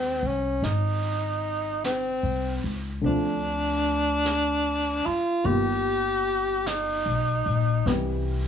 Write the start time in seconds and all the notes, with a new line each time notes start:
Already playing: D#2 D#3 G#3 C4 D#4 F4 C5
0.23 C2
0.27 C#4
0.62 G#1 D#4, brush sweep, snare
1.84 C4, brush sweep, snare, hi-hat pedal
2.23 C2
2.64 C#2
3.01 D2 D3 F3 A3 C4, brush sweep
3.05 D4 F4
4.25 brush sweep, snare, hi-hat pedal
5.06 F4, muted upright bass stroke
5.44 G1 D#3 G3 A#3 B3 G4, brush sweep
5.49 F4
6.66 D#4, brush sweep, snare, hi-hat pedal
7.06 B1
7.46 A#1
7.86 C2 C3 E3 G3 B3 G4 B4, brush sweep, snare